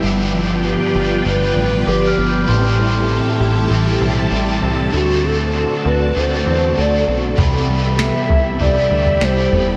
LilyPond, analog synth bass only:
\new Staff \with { instrumentName = "Analog synth bass" } { \clef bass \time 4/4 \key c \major \tempo 4 = 98 g,,4~ g,,16 r16 g,,8 g,,8 a,,8 g,,8 g,,8 | a,,4~ a,,16 r16 a,,8 a,,8 b,,8 a,,8 c,8 | d,4~ d,16 r16 d,8 d,8 e,8 d,8 b,,8 | c,4~ c,16 r16 c,8 c,8 d,8 c,8 f,,8 | }